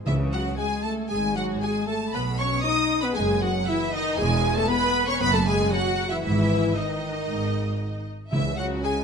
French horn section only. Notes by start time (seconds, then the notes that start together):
0.04 E3
0.33 F#3
0.57 G#3
0.83 A3
1.11 G#3
1.35 F#3
1.60 G#3
1.87 A3
2.14 B3
2.40 C#4
2.64 D#4
3.03 B3
3.17 G#3
3.41 F#3
3.68 E3
3.93 D#3
4.16 G#3
4.56 A3
4.68 B3
5.08 C#4
5.20 B3
5.33 A3
5.47 G#3
5.72 F#3
6.11 E3
6.25 E3
6.77 D#3
8.33 E3
8.58 F#3
8.84 G#3